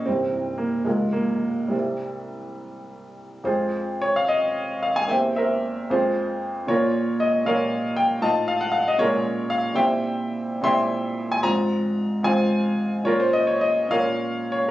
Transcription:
0.06 C1 C2 C4 E4 G4 G5
0.58 A#3
0.84 C#1 C#2 G#3 F4 A#4 F5
1.13 A#3
1.68 C2 G3 G4 C5 E5
3.44 F2 G#3 C4 F4 G#4 C5
4.02 C#5
4.16 F5
4.28 D#5
4.83 F5
4.96 G#5
5.08 E2 A#3 C4 G4 C5 E5 G5
5.36 A#4 C5 E5
5.90 F2 G#3 C4 F4 G#4 C5
6.67 A#2 F3 A#3 F4 A#4 C#5
7.20 D#5
7.45 A#2 F3 A#3 F4 A#4 C#5 F5
7.96 G5
8.21 A2 F3 D#4 F4 D#5 F5 A5
8.48 F5
8.61 F#5
8.72 F5
8.88 D#5
8.98 A#2 G#3 C#4 F4 G#4 A#4 C#5
9.50 F5
9.74 A#2 G3 C4 E4 C5 E5 G5
10.62 A#2 G3 C4 E4 E5 G5 C6
11.32 G#5
11.42 G#2 F3 C4 F4 A#5
12.23 G#2 F3 C4 F4 C5 F5 G#5
13.04 A#2 F3 C#4 F4 A#4 C#5
13.20 C5
13.33 D#5
13.47 C#5
13.61 D#5
13.89 A#2 F3 C#4 F4 A#4 C#5 F5
14.52 C#5

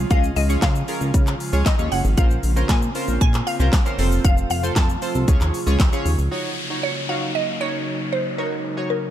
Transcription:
Already playing: C#3 F3 G#3 F4
0.10 C#2 C#4 F4 G#4 D#5 F5, kick, closed hi-hat, shaker
0.24 shaker
0.36 C#2 D#5, open hi-hat, shaker
0.49 C#4 F4 G#4 C#5, shaker
0.62 C#3 F5, kick, snare, clap, closed hi-hat, shaker
0.75 shaker
0.88 C#4 F4 G#4 A#4, open hi-hat, shaker
1.01 C#2, shaker
1.14 C#3, kick, closed hi-hat, shaker
1.27 clap, shaker
1.40 open hi-hat, shaker
1.53 C#2 C#4 F4 G#4 C#5, shaker
1.66 D#5, kick, snare, clap, closed hi-hat, shaker
1.79 D#2 C#4 F4 G#4 C#5, shaker
1.92 F#1 F#5, open hi-hat, shaker
2.05 G#1, shaker
2.17 A#1 A#3 C4 C#4 F4 A#4 C5 F5, kick, closed hi-hat, shaker
2.31 shaker
2.43 A#1, open hi-hat, shaker
2.56 C#4 F4 A#4 C5, shaker
2.69 A#2 G#5, kick, snare, clap, closed hi-hat, shaker
2.82 shaker
2.95 C#4 F4 A#4 C5, open hi-hat, shaker
3.08 A#1, shaker
3.21 A#2 G#5, kick, closed hi-hat, shaker
3.34 clap, shaker
3.47 F5, open hi-hat, shaker
3.60 C2 C#4 F4 A#4 C5, shaker
3.73 kick, snare, clap, closed hi-hat, shaker
3.85 C#4 F4 A#4 C5, shaker
3.98 F1 C3 F3 A3 C4 F4 A4 C5, open hi-hat, shaker
4.12 shaker
4.25 F1 F5, kick, closed hi-hat, shaker
4.38 shaker
4.50 F1 F5, open hi-hat, shaker
4.63 C4 F4 A4 C5, shaker
4.76 F2 A5, kick, snare, clap, closed hi-hat, shaker
4.89 shaker
5.02 C4 F4 A4 C5, open hi-hat, shaker
5.15 C2, shaker
5.28 C#2 C#3 G#3 C#4 F4 G#4 C#5, kick, closed hi-hat, shaker
5.41 D#2, clap, shaker
5.54 open hi-hat, shaker
5.66 C#2 C#4 F4 G#4 C#5, shaker
5.80 C#2, kick, snare, clap, closed hi-hat, shaker
5.92 C#4 F4 G#4 C#5, shaker
6.06 D#2, open hi-hat, shaker
6.18 C#2, shaker
6.31 C#3 F#3 A#3 D#4 F#4 C#5, downlifter
6.70 D#4 F#4 C#5
6.83 C#5
7.09 D#4 F#4 C#5 F5
7.35 D#5
7.60 D#4 F#4 C#5
8.13 C5
8.38 G#3 D#4 F#4 A#4 C#5
8.77 D#4 F#4 C#5
8.90 A#4

